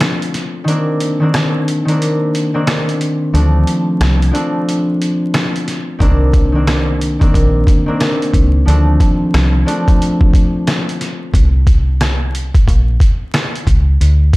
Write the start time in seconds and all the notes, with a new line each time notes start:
Already playing: F3 A3 C4 D4
0.00 cross-stick, snare, closed hi-hat
0.22 closed hi-hat
0.34 snare, closed hi-hat
0.64 D#3 A#3 D4, closed hi-hat
0.70 C4
1.00 closed hi-hat
1.20 D#3 A#3 C4 D4
1.34 cross-stick, snare, closed hi-hat
1.68 closed hi-hat
1.85 D#3 A#3 D4, closed hi-hat
1.91 C4
2.02 closed hi-hat
2.35 closed hi-hat
2.54 D#3 A#3 C4 D4
2.67 cross-stick, snare, closed hi-hat
2.89 closed hi-hat
3.01 closed hi-hat
3.33 D2 F3 A3 C4 D4, closed hi-hat
3.67 closed hi-hat
4.00 C2, cross-stick, snare, closed hi-hat
4.22 closed hi-hat
4.31 F3 A3 C4 D4, closed hi-hat
4.69 closed hi-hat
5.02 closed hi-hat
5.34 cross-stick, snare, closed hi-hat
5.56 closed hi-hat
5.68 snare, closed hi-hat
5.99 C2 D#3 A#3 D4, kick, closed hi-hat
6.03 C4
6.34 kick, closed hi-hat
6.52 D#3 A#3 D4
6.58 C4
6.67 cross-stick, snare, closed hi-hat
7.01 closed hi-hat
7.19 D#3 A#3 D4, kick, closed hi-hat
7.23 C4
7.34 A#1, kick, closed hi-hat
7.67 kick, closed hi-hat
7.86 D#3 A#3 C4 D4
8.01 cross-stick, snare, closed hi-hat
8.22 closed hi-hat
8.34 C#2, kick, closed hi-hat
8.65 D2 F3 A3 C4 D4, closed hi-hat
9.00 kick, closed hi-hat
9.34 C2, cross-stick, snare, closed hi-hat
9.66 F3 A3 C4 D4, closed hi-hat
9.88 kick, closed hi-hat
10.02 closed hi-hat
10.21 kick
10.34 kick, closed hi-hat
10.67 cross-stick, snare, closed hi-hat
10.89 closed hi-hat
11.01 snare, closed hi-hat
11.34 C2, kick, closed hi-hat
11.67 kick, closed hi-hat
12.01 cross-stick, snare, closed hi-hat
12.35 closed hi-hat
12.54 kick, closed hi-hat
12.68 A#1, kick, closed hi-hat
13.00 kick, closed hi-hat
13.34 cross-stick, snare, closed hi-hat
13.56 closed hi-hat
13.67 C#2, kick, closed hi-hat
14.01 D2, closed hi-hat
14.33 kick, closed hi-hat